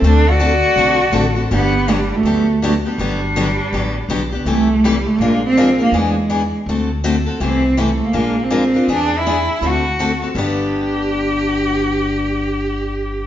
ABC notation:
X:1
M:4/4
L:1/16
Q:"Swing" 1/4=163
K:G
V:1 name="Clarinet"
A2 d12 z2 | G4 D2 F4 z2 F2 D2- | D12- D2 z2 | z16 |
z16 | z16 | z16 | z16 |
z16 |]
V:2 name="Steel-string acoustic guitar"
[D,A,CFA]2 z2 [D,A,CFA] z3 [D,A,CFA]2 z2 [D,A,CFA] z [CFA]2 | [D,F,B,DG]2 z2 [D,F,B,DG] z3 [D,F,B,DG]2 z2 [D,F,B,DG] z [B,DG]2 | [D,F,B,DG]2 z2 [D,F,B,DG] z3 [D,F,B,DG]2 z2 [D,F,B,DG] z [B,DG]2 | [C,E,A,EG]2 z2 [C,E,A,EG] z3 [=F,_A,D=F_B]2 z2 [F,A,DFB] z [DFB]2 |
[E,B,D^G]2 z2 [E,B,DG] z3 [D,A,CFA]2 z2 [D,A,CFA] z [CFA]2 | [C,E,A,EG]2 z2 [C,E,A,EG] z3 [=F,_A,D=F_B]2 z2 [F,A,DFB] z [DFB]2 | [E,B,D^G]2 z2 [E,B,DG] z3 [D,A,CFA]2 z2 [D,A,CFA] z [CFA]2 | [G,,D,B,DG]16- |
[G,,D,B,DG]16 |]
V:3 name="Cello"
D2 F12 z2 | B,4 G,2 A,4 z2 A,2 G,2- | G,12- G,2 z2 | A,4 G,2 A,2 _B,2 C4 B,2 |
^G,6 z8 z2 | C4 A,2 _B,4 C6 | D2 E6 F6 z2 | G16- |
G16 |]
V:4 name="Upright bass" clef=bass
D,,8 B,,,4 A,,,4 | G,,,8 D,,8 | G,,,8 A,,,4 B,,,4 | C,,8 _B,,,8 |
E,,8 D,,8 | C,,8 _B,,,8 | E,,8 D,,8 | G,,,16- |
G,,,16 |]